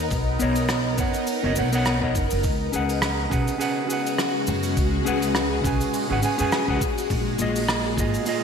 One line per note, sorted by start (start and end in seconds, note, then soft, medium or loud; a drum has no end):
0.00 0.37 B3 medium
0.00 4.74 B3 medium
0.00 2.41 D#4 medium
0.00 0.37 A#4 medium
0.00 2.41 A#4 medium
0.00 0.39 C#5 medium
0.00 0.40 D#5 medium
0.10 0.37 B1 medium
0.10 kick loud
0.10 open hi-hat medium
0.10 cabasa medium
0.39 0.96 B1 medium
0.39 0.95 B3 loud
0.39 0.96 A#4 medium
0.39 0.96 C#5 medium
0.39 0.97 D#5 loud
0.39 cabasa medium
0.55 open hi-hat medium
0.55 cabasa medium
0.69 cross-stick medium
0.69 open hi-hat medium
0.69 cabasa medium
0.97 1.12 F#1 medium
0.97 1.40 B3 medium
0.97 1.40 A#4 medium
0.97 1.41 C#5 medium
0.97 1.41 F#5 medium
0.97 kick loud
0.97 open hi-hat soft
0.97 cabasa medium
1.13 open hi-hat medium
1.13 cabasa medium
1.27 open hi-hat medium
1.27 cabasa medium
1.43 1.59 F#1 medium
1.43 1.54 B3 medium
1.43 1.54 A#4 medium
1.43 1.55 C#5 medium
1.43 1.56 D#5 medium
1.55 2.12 B1 medium
1.55 1.69 B3 medium
1.55 1.69 A#4 medium
1.55 1.70 C#5 medium
1.55 1.70 F#5 medium
1.55 open hi-hat medium
1.55 cabasa medium
1.72 1.98 B3 medium
1.72 1.98 A#4 medium
1.72 1.99 C#5 medium
1.72 2.00 F#5 loud
1.72 open hi-hat medium
1.72 cabasa medium
1.85 cross-stick medium
1.85 open hi-hat medium
1.85 cabasa soft
2.00 2.12 B3 medium
2.00 2.13 A#4 medium
2.00 2.14 C#5 medium
2.00 2.14 D#5 loud
2.00 kick medium
2.15 2.29 F#1 medium
2.15 kick loud
2.15 open hi-hat medium
2.15 cabasa medium
2.30 2.43 F#1 medium
2.30 open hi-hat medium
2.30 cabasa medium
2.43 2.70 C#2 loud
2.43 7.07 C#3 medium
2.43 8.44 G#3 medium
2.43 7.06 F#4 medium
2.43 kick loud
2.43 open hi-hat medium
2.43 cabasa medium
2.72 3.29 C#2 medium
2.72 3.28 C#4 medium
2.72 3.29 G#4 medium
2.72 3.29 B4 medium
2.72 3.30 F#5 medium
2.72 cabasa medium
2.89 open hi-hat medium
2.89 cabasa medium
3.02 cross-stick loud
3.02 open hi-hat medium
3.02 cabasa medium
3.30 3.46 B1 loud
3.30 3.57 C#4 medium
3.30 3.57 G#4 medium
3.30 3.58 B4 medium
3.30 3.58 F#5 medium
3.30 kick loud
3.30 open hi-hat soft
3.30 cabasa medium
3.47 open hi-hat medium
3.47 cabasa medium
3.58 3.85 C#4 medium
3.58 3.86 G#4 medium
3.58 3.87 B4 medium
3.58 3.87 F#5 loud
3.58 open hi-hat medium
3.58 cabasa medium
3.87 5.02 C#4 medium
3.87 5.03 G#4 medium
3.87 open hi-hat medium
3.87 cabasa medium
3.91 5.04 B4 medium
3.91 5.05 F#5 medium
4.06 open hi-hat medium
4.06 cabasa medium
4.18 cross-stick medium
4.18 open hi-hat medium
4.18 cabasa medium
4.47 4.73 F#2 loud
4.47 open hi-hat soft
4.47 cabasa medium
4.63 open hi-hat medium
4.63 cabasa medium
4.77 5.02 C#2 loud
4.77 8.44 A#2 medium
4.77 kick loud
4.77 open hi-hat medium
4.77 cabasa medium
5.05 5.62 C#2 medium
5.05 5.61 C#4 loud
5.05 5.61 G#4 medium
5.05 5.62 B4 medium
5.05 5.63 F#5 loud
5.05 cabasa medium
5.22 open hi-hat medium
5.22 cabasa medium
5.35 cross-stick medium
5.35 open hi-hat medium
5.35 cabasa soft
5.63 5.78 B1 medium
5.63 6.06 C#4 medium
5.63 6.06 G#4 medium
5.63 6.07 B4 medium
5.63 6.07 G#5 medium
5.63 kick loud
5.63 open hi-hat medium
5.63 cabasa medium
5.81 open hi-hat medium
5.81 cabasa medium
5.93 open hi-hat medium
5.93 cabasa medium
6.10 6.21 G#1 loud
6.10 6.20 C#4 medium
6.10 6.21 G#4 medium
6.10 6.21 B4 medium
6.10 6.22 F#5 loud
6.22 6.35 C#4 medium
6.22 6.36 G#4 medium
6.22 6.36 B4 medium
6.22 6.37 G#5 medium
6.22 open hi-hat medium
6.22 cabasa medium
6.38 6.51 F#2 medium
6.38 6.64 C#4 loud
6.38 6.65 G#4 medium
6.38 6.65 B4 medium
6.38 6.66 G#5 loud
6.38 open hi-hat medium
6.38 cabasa medium
6.52 cross-stick loud
6.52 open hi-hat medium
6.52 cabasa medium
6.67 6.79 C#2 medium
6.67 6.79 C#4 medium
6.67 6.79 G#4 medium
6.67 6.80 B4 medium
6.67 6.80 F#5 loud
6.67 kick medium
6.81 kick loud
6.81 open hi-hat soft
6.81 cabasa medium
6.97 open hi-hat medium
6.97 cabasa medium
7.09 7.36 A#1 loud
7.09 8.44 D#4 loud
7.09 kick loud
7.09 open hi-hat medium
7.09 cabasa medium
7.38 7.95 A#1 medium
7.38 7.94 A#3 medium
7.38 7.95 F4 medium
7.38 7.96 G#4 medium
7.38 7.96 D#5 medium
7.38 cabasa medium
7.56 open hi-hat medium
7.56 cabasa medium
7.68 cross-stick loud
7.68 open hi-hat medium
7.68 cabasa soft
7.97 8.12 G#1 medium
7.97 8.23 A#3 medium
7.97 8.24 F4 medium
7.97 8.24 G#4 medium
7.97 8.25 D#5 medium
7.97 kick loud
7.97 open hi-hat medium
7.97 cabasa medium
8.13 open hi-hat medium
8.13 cabasa medium
8.25 8.44 A#3 medium
8.25 8.44 F4 medium
8.25 8.44 G#4 medium
8.25 8.44 D#5 loud
8.25 open hi-hat medium
8.25 cabasa medium